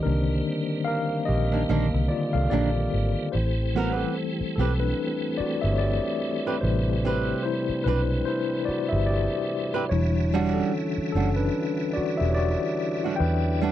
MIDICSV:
0, 0, Header, 1, 6, 480
1, 0, Start_track
1, 0, Tempo, 821918
1, 27, Time_signature, 4, 2, 24, 8
1, 8011, End_track
2, 0, Start_track
2, 0, Title_t, "Tine electric piano"
2, 0, Program_c, 0, 4
2, 0, Control_c, 0, 64, 127
2, 0, Note_on_c, 0, 50, 57
2, 0, Note_on_c, 0, 51, 52
2, 0, Note_on_c, 0, 58, 43
2, 0, Note_on_c, 0, 62, 64
2, 0, Note_on_c, 0, 67, 76
2, 0, Note_on_c, 0, 74, 103
2, 0, Note_on_c, 0, 75, 102
2, 16, Note_on_c, 0, 70, 97
2, 24, Note_off_c, 0, 51, 0
2, 24, Note_on_c, 0, 51, 56
2, 29, Note_off_c, 0, 58, 0
2, 29, Note_on_c, 0, 58, 50
2, 31, Note_off_c, 0, 62, 0
2, 31, Note_on_c, 0, 62, 71
2, 359, Note_off_c, 0, 51, 0
2, 362, Note_off_c, 0, 58, 0
2, 487, Note_off_c, 0, 62, 0
2, 494, Note_on_c, 0, 77, 108
2, 505, Note_off_c, 0, 70, 0
2, 512, Note_on_c, 0, 70, 88
2, 733, Note_off_c, 0, 70, 0
2, 733, Note_off_c, 0, 75, 0
2, 733, Note_on_c, 0, 75, 96
2, 748, Note_off_c, 0, 77, 0
2, 749, Note_off_c, 0, 67, 0
2, 749, Note_on_c, 0, 67, 79
2, 981, Note_on_c, 0, 51, 54
2, 984, Note_on_c, 0, 58, 47
2, 987, Note_off_c, 0, 50, 0
2, 987, Note_on_c, 0, 50, 54
2, 1201, Note_off_c, 0, 51, 0
2, 1202, Note_off_c, 0, 58, 0
2, 1204, Note_off_c, 0, 50, 0
2, 1218, Note_off_c, 0, 74, 0
2, 1218, Note_on_c, 0, 74, 94
2, 1229, Note_on_c, 0, 65, 65
2, 1352, Note_off_c, 0, 74, 0
2, 1358, Note_off_c, 0, 65, 0
2, 1361, Note_on_c, 0, 77, 89
2, 1372, Note_on_c, 0, 69, 71
2, 1436, Note_off_c, 0, 75, 0
2, 1444, Note_off_c, 0, 67, 0
2, 1460, Note_on_c, 0, 74, 89
2, 1463, Note_off_c, 0, 69, 0
2, 1467, Note_off_c, 0, 77, 0
2, 1471, Note_on_c, 0, 67, 68
2, 1926, Note_off_c, 0, 67, 0
2, 1939, Note_on_c, 0, 72, 79
2, 1954, Control_c, 0, 64, 0
2, 1954, Note_on_c, 0, 64, 65
2, 1958, Note_off_c, 0, 74, 0
2, 2067, Control_c, 0, 64, 127
2, 2186, Note_on_c, 0, 52, 53
2, 2187, Note_on_c, 0, 55, 47
2, 2192, Note_on_c, 0, 57, 61
2, 2307, Note_off_c, 0, 64, 0
2, 2318, Note_on_c, 0, 69, 83
2, 2332, Note_on_c, 0, 60, 65
2, 2334, Note_off_c, 0, 72, 0
2, 2646, Note_off_c, 0, 60, 0
2, 2654, Note_off_c, 0, 69, 0
2, 2661, Note_on_c, 0, 69, 80
2, 2676, Note_on_c, 0, 60, 65
2, 2801, Note_off_c, 0, 60, 0
2, 2801, Note_on_c, 0, 71, 91
2, 2808, Note_off_c, 0, 69, 0
2, 2817, Note_on_c, 0, 62, 69
2, 3121, Note_off_c, 0, 71, 0
2, 3129, Note_off_c, 0, 62, 0
2, 3139, Note_on_c, 0, 74, 90
2, 3155, Note_on_c, 0, 66, 70
2, 3204, Note_off_c, 0, 74, 0
2, 3216, Note_off_c, 0, 66, 0
2, 3279, Note_on_c, 0, 76, 93
2, 3294, Note_on_c, 0, 67, 70
2, 3310, Note_off_c, 0, 76, 0
2, 3322, Note_off_c, 0, 67, 0
2, 3345, Note_on_c, 0, 73, 71
2, 3376, Note_on_c, 0, 74, 91
2, 3383, Note_off_c, 0, 73, 0
2, 3391, Note_on_c, 0, 67, 74
2, 3846, Note_off_c, 0, 67, 0
2, 3859, Note_on_c, 0, 72, 89
2, 3865, Note_off_c, 0, 55, 0
2, 3870, Note_on_c, 0, 48, 51
2, 3872, Note_on_c, 0, 55, 54
2, 3875, Note_on_c, 0, 71, 59
2, 3876, Note_off_c, 0, 74, 0
2, 3877, Note_on_c, 0, 64, 69
2, 4083, Note_off_c, 0, 52, 0
2, 4086, Note_off_c, 0, 57, 0
2, 4329, Note_off_c, 0, 64, 0
2, 4331, Note_off_c, 0, 72, 0
2, 4338, Note_on_c, 0, 72, 93
2, 4353, Note_on_c, 0, 64, 78
2, 4565, Note_off_c, 0, 48, 0
2, 4566, Note_off_c, 0, 55, 0
2, 4568, Note_off_c, 0, 71, 0
2, 4574, Note_off_c, 0, 64, 0
2, 4578, Note_on_c, 0, 71, 94
2, 4590, Note_off_c, 0, 72, 0
2, 4597, Note_on_c, 0, 62, 69
2, 4805, Note_off_c, 0, 71, 0
2, 4815, Note_off_c, 0, 62, 0
2, 4820, Note_on_c, 0, 72, 94
2, 4835, Note_on_c, 0, 64, 83
2, 5053, Note_on_c, 0, 74, 91
2, 5054, Note_off_c, 0, 64, 0
2, 5071, Note_off_c, 0, 72, 0
2, 5072, Note_on_c, 0, 66, 72
2, 5191, Note_on_c, 0, 76, 97
2, 5199, Note_off_c, 0, 66, 0
2, 5204, Note_off_c, 0, 74, 0
2, 5213, Note_on_c, 0, 67, 71
2, 5292, Note_off_c, 0, 76, 0
2, 5294, Note_on_c, 0, 74, 91
2, 5303, Note_off_c, 0, 67, 0
2, 5314, Note_on_c, 0, 67, 75
2, 5767, Note_off_c, 0, 67, 0
2, 5778, Note_on_c, 0, 73, 97
2, 5787, Note_on_c, 0, 52, 54
2, 5788, Note_on_c, 0, 55, 51
2, 5792, Note_on_c, 0, 62, 65
2, 5793, Control_c, 0, 64, 0
2, 5795, Note_off_c, 0, 74, 0
2, 5795, Note_on_c, 0, 64, 69
2, 5895, Control_c, 0, 64, 127
2, 6147, Note_off_c, 0, 64, 0
2, 6154, Note_on_c, 0, 69, 98
2, 6172, Note_on_c, 0, 61, 70
2, 6173, Note_off_c, 0, 73, 0
2, 6477, Note_off_c, 0, 69, 0
2, 6486, Note_off_c, 0, 61, 0
2, 6496, Note_on_c, 0, 69, 90
2, 6516, Note_on_c, 0, 61, 75
2, 6631, Note_off_c, 0, 69, 0
2, 6636, Note_on_c, 0, 71, 93
2, 6641, Note_off_c, 0, 61, 0
2, 6646, Note_off_c, 0, 62, 0
2, 6653, Note_on_c, 0, 62, 80
2, 6967, Note_off_c, 0, 62, 0
2, 6970, Note_on_c, 0, 74, 98
2, 6988, Note_on_c, 0, 66, 81
2, 6992, Note_off_c, 0, 71, 0
2, 7108, Note_off_c, 0, 74, 0
2, 7110, Note_on_c, 0, 76, 98
2, 7117, Note_off_c, 0, 66, 0
2, 7130, Note_on_c, 0, 67, 77
2, 7179, Note_off_c, 0, 76, 0
2, 7182, Note_on_c, 0, 73, 74
2, 7190, Note_off_c, 0, 67, 0
2, 7209, Note_on_c, 0, 74, 99
2, 7221, Note_off_c, 0, 73, 0
2, 7227, Note_on_c, 0, 66, 78
2, 7683, Note_off_c, 0, 52, 0
2, 7684, Note_off_c, 0, 55, 0
2, 7684, Note_off_c, 0, 66, 0
2, 7686, Note_on_c, 0, 79, 94
2, 7706, Note_on_c, 0, 71, 78
2, 7713, Note_off_c, 0, 74, 0
2, 8011, Note_off_c, 0, 71, 0
2, 8011, Note_off_c, 0, 79, 0
2, 8011, End_track
3, 0, Start_track
3, 0, Title_t, "Nylon-string guitar"
3, 0, Program_c, 1, 24
3, 888, Note_on_c, 1, 62, 57
3, 893, Note_on_c, 1, 58, 53
3, 897, Note_on_c, 1, 51, 54
3, 942, Note_off_c, 1, 62, 0
3, 945, Note_off_c, 1, 58, 0
3, 947, Note_off_c, 1, 51, 0
3, 988, Note_on_c, 1, 51, 77
3, 992, Note_on_c, 1, 58, 94
3, 995, Note_on_c, 1, 62, 94
3, 1085, Note_off_c, 1, 51, 0
3, 1087, Note_off_c, 1, 58, 0
3, 1089, Note_off_c, 1, 62, 0
3, 1466, Note_on_c, 1, 51, 79
3, 1473, Note_on_c, 1, 58, 85
3, 1478, Note_on_c, 1, 62, 91
3, 1564, Note_off_c, 1, 51, 0
3, 1568, Note_off_c, 1, 58, 0
3, 1570, Note_off_c, 1, 62, 0
3, 2194, Note_on_c, 1, 59, 78
3, 2197, Note_on_c, 1, 66, 78
3, 2204, Note_on_c, 1, 70, 88
3, 2285, Note_off_c, 1, 66, 0
3, 2285, Note_on_c, 1, 67, 78
3, 2287, Note_off_c, 1, 59, 0
3, 2287, Note_on_c, 1, 60, 78
3, 2291, Note_off_c, 1, 70, 0
3, 2291, Note_on_c, 1, 71, 88
3, 2414, Note_off_c, 1, 60, 0
3, 2416, Note_off_c, 1, 67, 0
3, 2419, Note_off_c, 1, 71, 0
3, 2681, Note_on_c, 1, 60, 60
3, 2683, Note_on_c, 1, 67, 65
3, 2689, Note_on_c, 1, 71, 72
3, 2750, Note_off_c, 1, 60, 0
3, 2751, Note_off_c, 1, 67, 0
3, 2754, Note_off_c, 1, 71, 0
3, 3777, Note_on_c, 1, 71, 55
3, 3782, Note_on_c, 1, 67, 56
3, 3785, Note_on_c, 1, 60, 45
3, 3827, Note_off_c, 1, 71, 0
3, 3829, Note_off_c, 1, 67, 0
3, 3831, Note_off_c, 1, 60, 0
3, 4116, Note_on_c, 1, 60, 81
3, 4118, Note_on_c, 1, 67, 87
3, 4125, Note_on_c, 1, 71, 90
3, 4335, Note_off_c, 1, 60, 0
3, 4336, Note_off_c, 1, 67, 0
3, 4340, Note_off_c, 1, 71, 0
3, 4597, Note_on_c, 1, 60, 65
3, 4601, Note_on_c, 1, 67, 63
3, 4603, Note_on_c, 1, 71, 74
3, 4668, Note_off_c, 1, 60, 0
3, 4670, Note_off_c, 1, 67, 0
3, 4671, Note_off_c, 1, 71, 0
3, 5688, Note_on_c, 1, 71, 70
3, 5698, Note_on_c, 1, 67, 56
3, 5700, Note_on_c, 1, 60, 54
3, 5743, Note_off_c, 1, 71, 0
3, 5747, Note_off_c, 1, 67, 0
3, 5748, Note_off_c, 1, 60, 0
3, 6036, Note_on_c, 1, 55, 96
3, 6040, Note_on_c, 1, 62, 89
3, 6044, Note_on_c, 1, 66, 102
3, 6255, Note_off_c, 1, 55, 0
3, 6258, Note_off_c, 1, 62, 0
3, 6259, Note_off_c, 1, 66, 0
3, 6516, Note_on_c, 1, 55, 58
3, 6518, Note_on_c, 1, 62, 57
3, 6521, Note_on_c, 1, 66, 69
3, 6588, Note_off_c, 1, 55, 0
3, 6589, Note_off_c, 1, 62, 0
3, 6590, Note_off_c, 1, 66, 0
3, 7616, Note_on_c, 1, 66, 57
3, 7624, Note_on_c, 1, 62, 53
3, 7628, Note_on_c, 1, 55, 49
3, 7666, Note_off_c, 1, 66, 0
3, 7670, Note_off_c, 1, 62, 0
3, 7672, Note_off_c, 1, 55, 0
3, 7950, Note_on_c, 1, 55, 88
3, 7959, Note_on_c, 1, 62, 87
3, 7963, Note_on_c, 1, 66, 93
3, 8011, Note_off_c, 1, 55, 0
3, 8011, Note_off_c, 1, 62, 0
3, 8011, Note_off_c, 1, 66, 0
3, 8011, End_track
4, 0, Start_track
4, 0, Title_t, "Tonewheel organ"
4, 0, Program_c, 2, 16
4, 0, Note_on_c, 2, 55, 66
4, 0, Note_on_c, 2, 58, 65
4, 0, Note_on_c, 2, 60, 73
4, 1919, Note_off_c, 2, 55, 0
4, 1920, Note_off_c, 2, 58, 0
4, 1920, Note_off_c, 2, 60, 0
4, 1943, Note_on_c, 2, 67, 76
4, 1945, Note_on_c, 2, 57, 64
4, 1946, Note_on_c, 2, 52, 67
4, 1946, Note_on_c, 2, 60, 65
4, 3847, Note_off_c, 2, 60, 0
4, 3877, Note_on_c, 2, 60, 61
4, 5762, Note_off_c, 2, 67, 0
4, 5763, Note_off_c, 2, 52, 0
4, 5763, Note_off_c, 2, 57, 0
4, 5773, Note_off_c, 2, 60, 0
4, 5788, Note_on_c, 2, 64, 72
4, 5789, Note_on_c, 2, 50, 72
4, 5789, Note_on_c, 2, 52, 71
4, 5791, Note_on_c, 2, 66, 81
4, 7690, Note_off_c, 2, 66, 0
4, 7715, Note_on_c, 2, 62, 79
4, 8011, Note_off_c, 2, 50, 0
4, 8011, Note_off_c, 2, 52, 0
4, 8011, Note_off_c, 2, 62, 0
4, 8011, Note_off_c, 2, 64, 0
4, 8011, End_track
5, 0, Start_track
5, 0, Title_t, "Fingered electric bass"
5, 0, Program_c, 3, 33
5, 36, Note_on_c, 3, 36, 100
5, 234, Note_off_c, 3, 36, 0
5, 752, Note_on_c, 3, 34, 90
5, 952, Note_off_c, 3, 34, 0
5, 990, Note_on_c, 3, 34, 98
5, 1106, Note_off_c, 3, 34, 0
5, 1132, Note_on_c, 3, 36, 90
5, 1214, Note_off_c, 3, 36, 0
5, 1370, Note_on_c, 3, 36, 99
5, 1453, Note_off_c, 3, 36, 0
5, 1471, Note_on_c, 3, 34, 86
5, 1671, Note_off_c, 3, 34, 0
5, 1714, Note_on_c, 3, 32, 84
5, 1828, Note_off_c, 3, 32, 0
5, 1954, Note_on_c, 3, 33, 99
5, 2355, Note_off_c, 3, 33, 0
5, 2674, Note_on_c, 3, 35, 97
5, 2873, Note_off_c, 3, 35, 0
5, 3293, Note_on_c, 3, 31, 84
5, 3492, Note_off_c, 3, 31, 0
5, 3872, Note_on_c, 3, 33, 103
5, 4273, Note_off_c, 3, 33, 0
5, 4591, Note_on_c, 3, 35, 95
5, 4791, Note_off_c, 3, 35, 0
5, 5212, Note_on_c, 3, 31, 96
5, 5411, Note_off_c, 3, 31, 0
5, 5790, Note_on_c, 3, 28, 101
5, 6192, Note_off_c, 3, 28, 0
5, 6510, Note_on_c, 3, 30, 91
5, 6710, Note_off_c, 3, 30, 0
5, 7130, Note_on_c, 3, 28, 91
5, 7330, Note_off_c, 3, 28, 0
5, 7711, Note_on_c, 3, 40, 103
5, 8011, Note_off_c, 3, 40, 0
5, 8011, End_track
6, 0, Start_track
6, 0, Title_t, "Muted fingered electric bass strokes"
6, 2573, Note_on_c, 9, 29, 47
6, 2632, Note_off_c, 9, 29, 0
6, 3153, Note_on_c, 9, 29, 42
6, 3211, Note_off_c, 9, 29, 0
6, 4492, Note_on_c, 9, 29, 46
6, 4551, Note_off_c, 9, 29, 0
6, 5071, Note_on_c, 9, 29, 44
6, 5130, Note_off_c, 9, 29, 0
6, 6411, Note_on_c, 9, 29, 49
6, 6469, Note_off_c, 9, 29, 0
6, 6993, Note_on_c, 9, 29, 44
6, 7051, Note_off_c, 9, 29, 0
6, 8011, End_track
0, 0, End_of_file